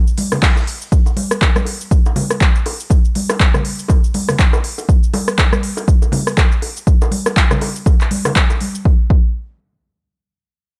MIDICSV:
0, 0, Header, 1, 2, 480
1, 0, Start_track
1, 0, Tempo, 495868
1, 892, Time_signature, 4, 2, 24, 8
1, 10450, End_track
2, 0, Start_track
2, 0, Title_t, "Drums"
2, 70, Note_on_c, 9, 82, 33
2, 167, Note_off_c, 9, 82, 0
2, 170, Note_on_c, 9, 46, 114
2, 172, Note_on_c, 9, 82, 66
2, 174, Note_on_c, 9, 63, 99
2, 267, Note_off_c, 9, 46, 0
2, 268, Note_off_c, 9, 82, 0
2, 271, Note_off_c, 9, 63, 0
2, 309, Note_on_c, 9, 37, 73
2, 310, Note_on_c, 9, 60, 75
2, 310, Note_on_c, 9, 82, 58
2, 314, Note_on_c, 9, 64, 78
2, 406, Note_off_c, 9, 37, 0
2, 407, Note_off_c, 9, 60, 0
2, 407, Note_off_c, 9, 82, 0
2, 409, Note_on_c, 9, 46, 70
2, 411, Note_off_c, 9, 64, 0
2, 411, Note_on_c, 9, 36, 121
2, 412, Note_on_c, 9, 38, 104
2, 412, Note_on_c, 9, 82, 52
2, 414, Note_on_c, 9, 39, 116
2, 506, Note_off_c, 9, 46, 0
2, 508, Note_off_c, 9, 36, 0
2, 508, Note_off_c, 9, 82, 0
2, 509, Note_off_c, 9, 38, 0
2, 511, Note_off_c, 9, 39, 0
2, 542, Note_on_c, 9, 60, 51
2, 545, Note_on_c, 9, 38, 49
2, 551, Note_on_c, 9, 82, 30
2, 639, Note_off_c, 9, 60, 0
2, 642, Note_off_c, 9, 38, 0
2, 648, Note_off_c, 9, 82, 0
2, 652, Note_on_c, 9, 46, 91
2, 654, Note_on_c, 9, 82, 73
2, 749, Note_off_c, 9, 46, 0
2, 751, Note_off_c, 9, 82, 0
2, 791, Note_on_c, 9, 82, 63
2, 888, Note_off_c, 9, 82, 0
2, 891, Note_on_c, 9, 36, 110
2, 892, Note_on_c, 9, 82, 54
2, 988, Note_off_c, 9, 36, 0
2, 989, Note_off_c, 9, 82, 0
2, 1027, Note_on_c, 9, 60, 49
2, 1030, Note_on_c, 9, 82, 33
2, 1124, Note_off_c, 9, 60, 0
2, 1127, Note_off_c, 9, 82, 0
2, 1128, Note_on_c, 9, 63, 88
2, 1130, Note_on_c, 9, 46, 109
2, 1225, Note_off_c, 9, 63, 0
2, 1227, Note_off_c, 9, 46, 0
2, 1270, Note_on_c, 9, 37, 85
2, 1271, Note_on_c, 9, 82, 68
2, 1367, Note_off_c, 9, 37, 0
2, 1368, Note_off_c, 9, 82, 0
2, 1369, Note_on_c, 9, 60, 72
2, 1371, Note_on_c, 9, 36, 117
2, 1372, Note_on_c, 9, 82, 54
2, 1374, Note_on_c, 9, 39, 110
2, 1465, Note_off_c, 9, 60, 0
2, 1468, Note_off_c, 9, 36, 0
2, 1469, Note_off_c, 9, 82, 0
2, 1471, Note_off_c, 9, 39, 0
2, 1507, Note_on_c, 9, 63, 95
2, 1510, Note_on_c, 9, 37, 77
2, 1511, Note_on_c, 9, 82, 31
2, 1600, Note_on_c, 9, 60, 44
2, 1604, Note_off_c, 9, 63, 0
2, 1607, Note_off_c, 9, 37, 0
2, 1608, Note_off_c, 9, 82, 0
2, 1612, Note_on_c, 9, 46, 93
2, 1697, Note_off_c, 9, 60, 0
2, 1708, Note_off_c, 9, 46, 0
2, 1751, Note_on_c, 9, 82, 65
2, 1848, Note_off_c, 9, 82, 0
2, 1851, Note_on_c, 9, 36, 114
2, 1853, Note_on_c, 9, 82, 53
2, 1948, Note_off_c, 9, 36, 0
2, 1950, Note_off_c, 9, 82, 0
2, 1992, Note_on_c, 9, 82, 32
2, 1996, Note_on_c, 9, 60, 68
2, 2089, Note_off_c, 9, 82, 0
2, 2089, Note_on_c, 9, 64, 93
2, 2090, Note_on_c, 9, 63, 85
2, 2092, Note_on_c, 9, 46, 105
2, 2093, Note_off_c, 9, 60, 0
2, 2186, Note_off_c, 9, 63, 0
2, 2186, Note_off_c, 9, 64, 0
2, 2189, Note_off_c, 9, 46, 0
2, 2230, Note_on_c, 9, 60, 45
2, 2231, Note_on_c, 9, 37, 74
2, 2232, Note_on_c, 9, 82, 62
2, 2327, Note_off_c, 9, 60, 0
2, 2328, Note_off_c, 9, 37, 0
2, 2329, Note_off_c, 9, 82, 0
2, 2332, Note_on_c, 9, 36, 114
2, 2333, Note_on_c, 9, 82, 53
2, 2336, Note_on_c, 9, 39, 111
2, 2428, Note_off_c, 9, 36, 0
2, 2430, Note_off_c, 9, 82, 0
2, 2433, Note_off_c, 9, 39, 0
2, 2472, Note_on_c, 9, 82, 31
2, 2569, Note_off_c, 9, 82, 0
2, 2572, Note_on_c, 9, 46, 87
2, 2575, Note_on_c, 9, 60, 67
2, 2669, Note_off_c, 9, 46, 0
2, 2671, Note_off_c, 9, 60, 0
2, 2712, Note_on_c, 9, 82, 64
2, 2806, Note_on_c, 9, 60, 51
2, 2808, Note_off_c, 9, 82, 0
2, 2812, Note_on_c, 9, 36, 108
2, 2813, Note_on_c, 9, 82, 56
2, 2903, Note_off_c, 9, 60, 0
2, 2909, Note_off_c, 9, 36, 0
2, 2910, Note_off_c, 9, 82, 0
2, 2952, Note_on_c, 9, 82, 32
2, 3049, Note_off_c, 9, 82, 0
2, 3052, Note_on_c, 9, 46, 105
2, 3056, Note_on_c, 9, 63, 82
2, 3149, Note_off_c, 9, 46, 0
2, 3153, Note_off_c, 9, 63, 0
2, 3190, Note_on_c, 9, 37, 87
2, 3191, Note_on_c, 9, 82, 68
2, 3192, Note_on_c, 9, 60, 85
2, 3287, Note_off_c, 9, 37, 0
2, 3288, Note_off_c, 9, 82, 0
2, 3289, Note_off_c, 9, 60, 0
2, 3292, Note_on_c, 9, 36, 115
2, 3293, Note_on_c, 9, 82, 58
2, 3296, Note_on_c, 9, 39, 107
2, 3388, Note_off_c, 9, 36, 0
2, 3390, Note_off_c, 9, 82, 0
2, 3392, Note_off_c, 9, 39, 0
2, 3429, Note_on_c, 9, 63, 80
2, 3429, Note_on_c, 9, 64, 84
2, 3430, Note_on_c, 9, 37, 79
2, 3431, Note_on_c, 9, 82, 34
2, 3437, Note_on_c, 9, 60, 50
2, 3526, Note_off_c, 9, 63, 0
2, 3526, Note_off_c, 9, 64, 0
2, 3527, Note_off_c, 9, 37, 0
2, 3528, Note_off_c, 9, 82, 0
2, 3531, Note_on_c, 9, 46, 88
2, 3534, Note_off_c, 9, 60, 0
2, 3628, Note_off_c, 9, 46, 0
2, 3670, Note_on_c, 9, 82, 68
2, 3760, Note_on_c, 9, 60, 79
2, 3767, Note_off_c, 9, 82, 0
2, 3771, Note_on_c, 9, 36, 106
2, 3772, Note_on_c, 9, 82, 57
2, 3857, Note_off_c, 9, 60, 0
2, 3868, Note_off_c, 9, 36, 0
2, 3869, Note_off_c, 9, 82, 0
2, 3910, Note_on_c, 9, 82, 34
2, 4007, Note_off_c, 9, 82, 0
2, 4010, Note_on_c, 9, 46, 106
2, 4011, Note_on_c, 9, 63, 88
2, 4012, Note_on_c, 9, 60, 54
2, 4107, Note_off_c, 9, 46, 0
2, 4108, Note_off_c, 9, 63, 0
2, 4109, Note_off_c, 9, 60, 0
2, 4149, Note_on_c, 9, 37, 82
2, 4150, Note_on_c, 9, 82, 63
2, 4155, Note_on_c, 9, 64, 67
2, 4246, Note_off_c, 9, 37, 0
2, 4247, Note_off_c, 9, 82, 0
2, 4251, Note_on_c, 9, 36, 115
2, 4252, Note_off_c, 9, 64, 0
2, 4252, Note_on_c, 9, 82, 55
2, 4254, Note_on_c, 9, 39, 111
2, 4348, Note_off_c, 9, 36, 0
2, 4348, Note_off_c, 9, 82, 0
2, 4351, Note_off_c, 9, 39, 0
2, 4386, Note_on_c, 9, 60, 84
2, 4391, Note_on_c, 9, 82, 30
2, 4483, Note_off_c, 9, 60, 0
2, 4487, Note_off_c, 9, 82, 0
2, 4491, Note_on_c, 9, 46, 88
2, 4588, Note_off_c, 9, 46, 0
2, 4629, Note_on_c, 9, 60, 52
2, 4631, Note_on_c, 9, 82, 62
2, 4725, Note_off_c, 9, 60, 0
2, 4728, Note_off_c, 9, 82, 0
2, 4731, Note_on_c, 9, 36, 114
2, 4733, Note_on_c, 9, 82, 56
2, 4828, Note_off_c, 9, 36, 0
2, 4830, Note_off_c, 9, 82, 0
2, 4872, Note_on_c, 9, 82, 35
2, 4968, Note_off_c, 9, 82, 0
2, 4971, Note_on_c, 9, 46, 100
2, 4971, Note_on_c, 9, 63, 95
2, 4972, Note_on_c, 9, 60, 80
2, 5067, Note_off_c, 9, 63, 0
2, 5068, Note_off_c, 9, 46, 0
2, 5069, Note_off_c, 9, 60, 0
2, 5110, Note_on_c, 9, 37, 82
2, 5111, Note_on_c, 9, 82, 68
2, 5207, Note_off_c, 9, 37, 0
2, 5208, Note_off_c, 9, 82, 0
2, 5211, Note_on_c, 9, 36, 107
2, 5212, Note_on_c, 9, 82, 58
2, 5214, Note_on_c, 9, 60, 58
2, 5215, Note_on_c, 9, 39, 112
2, 5308, Note_off_c, 9, 36, 0
2, 5309, Note_off_c, 9, 82, 0
2, 5311, Note_off_c, 9, 39, 0
2, 5311, Note_off_c, 9, 60, 0
2, 5348, Note_on_c, 9, 63, 95
2, 5350, Note_on_c, 9, 37, 83
2, 5351, Note_on_c, 9, 82, 35
2, 5445, Note_off_c, 9, 63, 0
2, 5447, Note_off_c, 9, 37, 0
2, 5448, Note_off_c, 9, 82, 0
2, 5451, Note_on_c, 9, 46, 91
2, 5548, Note_off_c, 9, 46, 0
2, 5586, Note_on_c, 9, 60, 76
2, 5591, Note_on_c, 9, 82, 71
2, 5682, Note_off_c, 9, 60, 0
2, 5688, Note_off_c, 9, 82, 0
2, 5691, Note_on_c, 9, 36, 114
2, 5692, Note_on_c, 9, 82, 57
2, 5787, Note_off_c, 9, 36, 0
2, 5789, Note_off_c, 9, 82, 0
2, 5829, Note_on_c, 9, 60, 54
2, 5831, Note_on_c, 9, 82, 36
2, 5923, Note_on_c, 9, 64, 88
2, 5926, Note_off_c, 9, 60, 0
2, 5928, Note_off_c, 9, 82, 0
2, 5931, Note_on_c, 9, 46, 105
2, 5932, Note_on_c, 9, 63, 82
2, 6020, Note_off_c, 9, 64, 0
2, 6027, Note_off_c, 9, 46, 0
2, 6029, Note_off_c, 9, 63, 0
2, 6070, Note_on_c, 9, 37, 78
2, 6071, Note_on_c, 9, 82, 62
2, 6167, Note_off_c, 9, 37, 0
2, 6168, Note_off_c, 9, 82, 0
2, 6171, Note_on_c, 9, 36, 115
2, 6171, Note_on_c, 9, 60, 79
2, 6172, Note_on_c, 9, 82, 58
2, 6175, Note_on_c, 9, 39, 113
2, 6267, Note_off_c, 9, 36, 0
2, 6268, Note_off_c, 9, 60, 0
2, 6269, Note_off_c, 9, 82, 0
2, 6272, Note_off_c, 9, 39, 0
2, 6311, Note_on_c, 9, 82, 34
2, 6408, Note_off_c, 9, 82, 0
2, 6411, Note_on_c, 9, 46, 87
2, 6411, Note_on_c, 9, 60, 49
2, 6508, Note_off_c, 9, 46, 0
2, 6508, Note_off_c, 9, 60, 0
2, 6551, Note_on_c, 9, 82, 68
2, 6648, Note_off_c, 9, 82, 0
2, 6651, Note_on_c, 9, 36, 108
2, 6652, Note_on_c, 9, 82, 57
2, 6747, Note_off_c, 9, 36, 0
2, 6748, Note_off_c, 9, 82, 0
2, 6790, Note_on_c, 9, 82, 37
2, 6794, Note_on_c, 9, 60, 80
2, 6887, Note_off_c, 9, 82, 0
2, 6887, Note_on_c, 9, 63, 85
2, 6890, Note_on_c, 9, 46, 105
2, 6891, Note_off_c, 9, 60, 0
2, 6983, Note_off_c, 9, 63, 0
2, 6987, Note_off_c, 9, 46, 0
2, 7029, Note_on_c, 9, 37, 83
2, 7030, Note_on_c, 9, 82, 73
2, 7039, Note_on_c, 9, 60, 58
2, 7126, Note_off_c, 9, 37, 0
2, 7127, Note_off_c, 9, 82, 0
2, 7130, Note_on_c, 9, 36, 110
2, 7133, Note_on_c, 9, 82, 55
2, 7135, Note_on_c, 9, 39, 118
2, 7136, Note_off_c, 9, 60, 0
2, 7227, Note_off_c, 9, 36, 0
2, 7229, Note_off_c, 9, 82, 0
2, 7232, Note_off_c, 9, 39, 0
2, 7269, Note_on_c, 9, 37, 84
2, 7269, Note_on_c, 9, 63, 85
2, 7269, Note_on_c, 9, 64, 95
2, 7270, Note_on_c, 9, 82, 36
2, 7366, Note_off_c, 9, 37, 0
2, 7366, Note_off_c, 9, 63, 0
2, 7366, Note_off_c, 9, 64, 0
2, 7367, Note_off_c, 9, 82, 0
2, 7370, Note_on_c, 9, 46, 85
2, 7371, Note_on_c, 9, 60, 90
2, 7467, Note_off_c, 9, 46, 0
2, 7468, Note_off_c, 9, 60, 0
2, 7510, Note_on_c, 9, 82, 71
2, 7607, Note_off_c, 9, 82, 0
2, 7609, Note_on_c, 9, 60, 55
2, 7610, Note_on_c, 9, 36, 114
2, 7612, Note_on_c, 9, 82, 61
2, 7706, Note_off_c, 9, 60, 0
2, 7707, Note_off_c, 9, 36, 0
2, 7708, Note_off_c, 9, 82, 0
2, 7749, Note_on_c, 9, 82, 35
2, 7752, Note_on_c, 9, 39, 38
2, 7846, Note_off_c, 9, 82, 0
2, 7849, Note_off_c, 9, 39, 0
2, 7850, Note_on_c, 9, 46, 105
2, 7851, Note_on_c, 9, 63, 93
2, 7947, Note_off_c, 9, 46, 0
2, 7947, Note_off_c, 9, 63, 0
2, 7987, Note_on_c, 9, 64, 73
2, 7988, Note_on_c, 9, 37, 80
2, 7989, Note_on_c, 9, 82, 67
2, 7995, Note_on_c, 9, 60, 83
2, 8084, Note_off_c, 9, 64, 0
2, 8085, Note_off_c, 9, 37, 0
2, 8086, Note_off_c, 9, 82, 0
2, 8090, Note_on_c, 9, 36, 105
2, 8092, Note_off_c, 9, 60, 0
2, 8092, Note_on_c, 9, 82, 61
2, 8094, Note_on_c, 9, 39, 124
2, 8187, Note_off_c, 9, 36, 0
2, 8188, Note_off_c, 9, 82, 0
2, 8191, Note_off_c, 9, 39, 0
2, 8228, Note_on_c, 9, 60, 58
2, 8230, Note_on_c, 9, 82, 33
2, 8325, Note_off_c, 9, 60, 0
2, 8327, Note_off_c, 9, 82, 0
2, 8330, Note_on_c, 9, 46, 87
2, 8336, Note_on_c, 9, 63, 68
2, 8427, Note_off_c, 9, 46, 0
2, 8433, Note_off_c, 9, 63, 0
2, 8470, Note_on_c, 9, 82, 73
2, 8566, Note_off_c, 9, 82, 0
2, 8571, Note_on_c, 9, 36, 108
2, 8667, Note_off_c, 9, 36, 0
2, 8811, Note_on_c, 9, 36, 107
2, 8908, Note_off_c, 9, 36, 0
2, 10450, End_track
0, 0, End_of_file